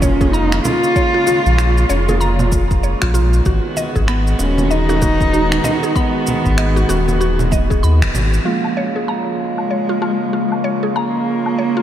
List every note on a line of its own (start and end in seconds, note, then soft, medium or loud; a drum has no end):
0.00 0.60 F1 medium
0.00 3.42 C#3 medium
0.00 3.42 G#3 medium
0.00 3.42 A#3 medium
0.00 0.33 C#4 medium
0.00 3.42 F4 medium
0.00 0.20 C#5 medium
0.00 kick loud
0.00 high conga medium
0.00 low conga medium
0.00 cabasa medium
0.21 0.32 G#4 medium
0.21 kick loud
0.21 high bongo medium
0.21 cabasa soft
0.32 0.63 D#4 loud
0.32 0.44 A#5 loud
0.32 cabasa soft
0.52 finger snap medium
0.52 high conga medium
0.52 cabasa soft
0.63 2.47 F4 loud
0.63 high bongo medium
0.63 high conga medium
0.63 low conga medium
0.63 cabasa medium
0.84 cabasa soft
0.96 1.14 C#5 medium
0.96 kick loud
0.96 cabasa soft
1.14 1.26 F4 medium
1.27 1.57 F4 medium
1.27 high conga medium
1.27 cabasa medium
1.46 1.85 A#1 medium
1.46 cabasa soft
1.58 1.88 F4 medium
1.58 finger snap medium
1.58 cabasa soft
1.77 cabasa soft
1.89 2.95 F1 medium
1.89 2.07 C#5 loud
1.89 high bongo medium
1.89 cabasa medium
2.09 2.20 G#4 medium
2.09 high bongo medium
2.09 high conga medium
2.09 cabasa soft
2.21 2.31 A#5 medium
2.21 cabasa soft
2.39 low conga medium
2.39 cabasa soft
2.52 kick loud
2.52 high conga medium
2.52 cabasa medium
2.71 kick medium
2.71 cabasa soft
2.83 3.01 C#5 medium
2.83 cabasa soft
3.02 3.41 A#1 medium
3.02 3.13 F4 loud
3.02 finger snap medium
3.02 kick medium
3.02 cabasa soft
3.14 3.44 F4 loud
3.14 low conga medium
3.14 cabasa medium
3.33 cabasa soft
3.46 3.60 G#1 medium
3.46 8.42 D#3 medium
3.46 8.42 G#3 medium
3.46 8.42 B3 medium
3.46 8.42 F#4 medium
3.46 3.76 F#4 medium
3.46 kick loud
3.46 cabasa soft
3.77 3.95 D#5 loud
3.77 high conga medium
3.77 cabasa medium
3.96 4.35 G#1 medium
3.96 4.07 G#4 medium
3.96 kick medium
3.96 cabasa soft
4.08 4.22 B3 medium
4.08 4.19 B5 loud
4.08 finger snap medium
4.08 cabasa soft
4.27 cabasa soft
4.39 5.60 D#1 medium
4.39 4.72 C#4 loud
4.39 high bongo medium
4.39 cabasa medium
4.58 high bongo medium
4.58 high conga medium
4.58 cabasa soft
4.71 5.98 D#4 loud
4.71 4.89 D#5 medium
4.71 cabasa soft
4.89 5.01 F#4 loud
4.89 high bongo medium
4.89 cabasa soft
5.02 5.32 F#4 loud
5.02 kick loud
5.02 high conga medium
5.02 low conga medium
5.02 cabasa medium
5.20 kick medium
5.20 high bongo medium
5.20 cabasa soft
5.33 5.63 F#4 medium
5.33 cabasa soft
5.52 finger snap medium
5.52 high conga medium
5.52 cabasa soft
5.64 5.82 D#5 loud
5.64 high bongo medium
5.64 high conga medium
5.64 low conga medium
5.64 cabasa medium
5.83 5.95 G#4 medium
5.83 cabasa soft
5.95 7.21 B3 loud
5.95 6.06 B5 loud
5.95 kick loud
5.95 cabasa soft
6.27 high conga medium
6.27 low conga medium
6.27 cabasa medium
6.46 6.85 G#1 medium
6.46 kick medium
6.46 cabasa soft
6.58 6.76 D#5 medium
6.58 finger snap medium
6.58 cabasa soft
6.76 6.88 F#4 medium
6.76 cabasa soft
6.89 7.83 D#1 medium
6.89 7.19 F#4 loud
6.89 high bongo medium
6.89 cabasa medium
7.08 high bongo medium
7.08 high conga medium
7.08 cabasa soft
7.21 7.51 F#4 medium
7.21 cabasa soft
7.39 low conga medium
7.39 cabasa soft
7.51 7.70 D#5 medium
7.51 kick loud
7.51 high conga medium
7.51 cabasa medium
7.70 7.82 G#4 medium
7.70 kick medium
7.70 cabasa soft
7.83 8.03 D#2 medium
7.83 7.94 B5 loud
7.83 cabasa soft
8.02 8.12 D#1 medium
8.02 finger snap medium
8.02 kick medium
8.02 cabasa soft
8.14 8.40 G#1 loud
8.14 low conga medium
8.14 cabasa medium
8.34 cabasa soft
8.44 11.82 C#3 medium
8.44 11.82 F3 medium
8.44 11.82 G#3 medium
8.44 11.82 A#3 medium
8.44 11.82 C#4 medium
8.44 8.76 F4 medium
8.44 11.82 F4 medium
8.44 11.82 F5 medium
8.48 11.82 G#4 medium
8.64 low woodblock medium
8.77 8.95 C#5 loud
8.96 9.07 G#4 medium
9.08 10.97 G#3 medium
9.08 9.19 A#5 medium
9.08 low woodblock medium
9.58 low woodblock medium
9.71 9.89 C#5 medium
9.89 10.01 F4 medium
10.02 10.32 F4 medium
10.02 low woodblock medium
10.33 10.63 F4 medium
10.52 low woodblock medium
10.64 10.82 C#5 medium
10.83 10.94 G#4 medium
10.96 11.82 A#3 loud
10.96 11.07 A#5 medium
10.96 low woodblock medium
11.46 low woodblock medium
11.59 11.76 C#5 medium
11.77 11.82 F4 medium